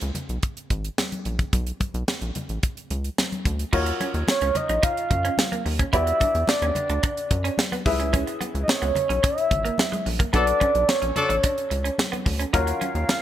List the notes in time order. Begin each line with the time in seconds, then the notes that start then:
0.01 C#2, closed hi-hat
0.15 closed hi-hat, muted conga, low conga
0.29 B1, closed hi-hat
0.43 kick, closed hi-hat
0.57 closed hi-hat
0.70 G#1, kick, closed hi-hat
0.85 closed hi-hat
0.98 snare, high conga
1.12 closed hi-hat, high conga
1.25 A#1, closed hi-hat
1.39 kick, closed hi-hat
1.53 B1, kick, closed hi-hat, muted conga
1.67 closed hi-hat
1.80 kick, closed hi-hat, muted conga
1.94 B1, closed hi-hat
2.08 snare, high conga
2.21 A#1, closed hi-hat
2.35 closed hi-hat, muted conga, low conga
2.49 A1, closed hi-hat
2.63 kick, closed hi-hat
2.77 closed hi-hat
2.90 C#2, closed hi-hat, muted conga
3.04 closed hi-hat
3.18 snare, high conga
3.32 closed hi-hat, high conga
3.45 D2, kick, closed hi-hat
3.59 closed hi-hat
3.73 D#2 D#4 F4 F#4 A#4 C#5, kick, crash, muted conga
3.86 muted clean electric guitar stroke, closed hi-hat
4.00 C#4, closed hi-hat, muted conga
4.14 D#2, closed hi-hat
4.28 C#5, snare, high conga
4.41 C#2 C#4, closed hi-hat
4.55 D#5, muted clean electric guitar stroke, closed hi-hat, muted conga, low conga
4.69 A#1 D#4, closed hi-hat
4.83 D#4 F5, kick, closed hi-hat
4.97 closed hi-hat
5.10 F#2, muted clean electric guitar stroke, kick, closed hi-hat, muted conga, low conga
5.25 C#4, closed hi-hat
5.38 snare, high conga
5.52 A#3, closed hi-hat, high conga
5.66 D#2, muted clean electric guitar stroke, open hi-hat
5.79 C#4, kick, closed hi-hat
5.93 E2 E4 F#4 G4 B4 D5 E5, kick, closed hi-hat, muted conga
6.07 muted clean electric guitar stroke, closed hi-hat
6.20 D4, kick, closed hi-hat, muted conga
6.35 E2, closed hi-hat
6.48 D5, snare, high conga
6.62 D#2 C#4, closed hi-hat
6.75 muted clean electric guitar stroke, closed hi-hat, muted conga, low conga
6.89 D2 D4, closed hi-hat
7.03 D4, kick, closed hi-hat
7.17 closed hi-hat
7.31 F#2, muted clean electric guitar stroke, kick, closed hi-hat
7.44 C#4, closed hi-hat
7.58 snare, high conga
7.72 B3, closed hi-hat, high conga
7.86 C#2 E4 G#4 B4 E5, muted clean electric guitar stroke, kick, open hi-hat
8.00 C#4, closed hi-hat
8.13 C#4, kick, closed hi-hat, muted conga
8.27 muted clean electric guitar stroke, closed hi-hat
8.41 B3, closed hi-hat, muted conga
8.55 C#2, closed hi-hat
8.63 D#5
8.68 C#5, snare, high conga
8.82 C#2 B3, closed hi-hat
8.95 muted clean electric guitar stroke, closed hi-hat, muted conga, low conga
9.09 B1 C#4, closed hi-hat
9.23 C#4 E5, kick, closed hi-hat
9.38 closed hi-hat
9.51 G#1, muted clean electric guitar stroke, kick, closed hi-hat, muted conga, low conga
9.65 A#3, closed hi-hat
9.78 snare, high conga
9.92 G#3, closed hi-hat, high conga
10.06 A#1, muted clean electric guitar stroke, open hi-hat
10.19 A#3, kick, closed hi-hat
10.33 B1 F#3 B3 D4 F#4 A4 B4 D5, kick, closed hi-hat, muted conga
10.47 muted clean electric guitar stroke, closed hi-hat
10.60 C#4, kick, closed hi-hat, muted conga
10.75 B1, closed hi-hat
10.89 C#5, snare, high conga
11.02 A#1 C#4, closed hi-hat
11.16 F#3 D4 A4, muted clean electric guitar stroke, closed hi-hat, muted conga, low conga
11.29 A1 D4, closed hi-hat
11.43 D4, kick, closed hi-hat
11.58 closed hi-hat
11.70 C#2, muted clean electric guitar stroke, closed hi-hat
11.84 C#4, closed hi-hat
11.98 snare, high conga
12.12 B3, closed hi-hat, high conga
12.26 D2, muted clean electric guitar stroke, kick, open hi-hat
12.39 C#4, closed hi-hat
12.53 D#2 D#3 F#3 C#4 D#4 F4 F#4 A#4 C#5 F5, kick, closed hi-hat, muted conga
12.67 muted clean electric guitar stroke, closed hi-hat
12.81 C#4, closed hi-hat, muted conga
12.95 D#2, closed hi-hat
13.09 F5, snare, high conga